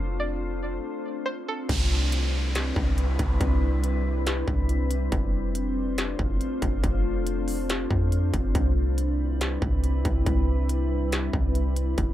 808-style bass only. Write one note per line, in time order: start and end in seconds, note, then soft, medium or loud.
0.00 0.80 F1 loud
1.69 2.72 C2 loud
2.76 3.17 C2 loud
3.19 3.40 C2 loud
3.41 4.44 C2 loud
4.48 5.09 C2 loud
5.12 6.15 F1 loud
6.19 6.40 F1 loud
6.62 6.83 F1 loud
6.84 7.87 F1 loud
7.91 8.32 F2 loud
8.34 8.54 F1 loud
8.55 9.58 C2 loud
9.62 10.03 C2 loud
10.05 10.26 C2 loud
10.26 11.30 C2 loud
11.33 11.95 C2 loud
11.98 12.13 F1 loud